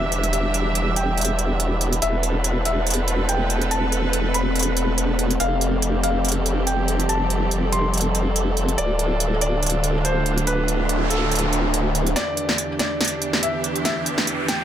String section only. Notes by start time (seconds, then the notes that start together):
Already playing: E3 D4 G4 E5
2.02 C4 A4 B4
5.40 F3 C4 G4 A4
8.78 D3 D4 F4
12.16 E2 E3 D4 G4